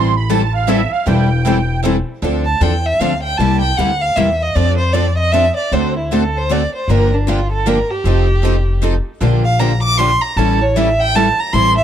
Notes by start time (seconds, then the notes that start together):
Already playing: A1 E3 G3 C4 E4 A4 C6
0.16 B5
0.29 E3 G3 C4 E4 A4 A5
0.54 F5
0.68 E3 G3 C4 E4 A4 E5
0.92 F5
1.07 E1 E3 G3 C4 E4 A4 G5
1.46 E3 G3 C4 E4 A4
1.85 E3 G3 C4 E4 A4
2.22 D2 D3 F3 C4 D4 A4
2.45 A5
2.61 E2 D3 F3 C4 D4 A4 G5
2.86 E5
3.00 D2 D3 F3 C4 D4 A4 F5
3.23 G5
3.38 C2 C3 G3 A#3 E4 G4 A5
3.62 G5
3.77 D2 C3 G3 A#3 E4 G4 F#5
4.01 F5
4.16 E2 C3 G3 A#3 E4 G4 E5
4.42 D#5
4.55 F2 F3 C4 D4 A4 D5
4.78 C5
4.93 F3 C4 D4 A4 D5
5.18 D#5
5.32 F3 C4 D4 A4 E5
5.57 D5
5.72 D2 D3 A3 C4 F#4 A4 C5
5.98 E4
6.12 D3 A3 C4 F#4 A4
6.38 C5
6.49 D3 A3 C4 F#4 A4 D5
6.76 C5
6.88 G1 D3 F3 A#3 D4 G4 A#4
7.14 D4
7.27 D3 F3 A#3 D4 F4 G4
7.53 A4
7.66 D3 F3 A#3 D4 G4 A#4
7.91 G4
8.04 F1 F3 C4 D#4 A4
8.44 F3 C4 D#4 A4
8.82 F3 C4 D#4 A4
9.21 A#1 D3 F3 A#3 D4 G4
9.45 F5
9.59 D3 F3 A#3 D4 G4 A#5
9.83 D6
9.98 D3 F3 A#3 D4 G4 C6
10.21 A#5
10.36 A1 E3 G3 C#4 E4 A4 A5
10.61 C#5
10.76 E3 G3 C#4 E4 A4 E5
11.00 G5
11.15 E3 G3 C#4 E4 A4 A5
11.40 A#5
11.53 A1 E3 G3 C4 E4 A4 C6
11.78 E5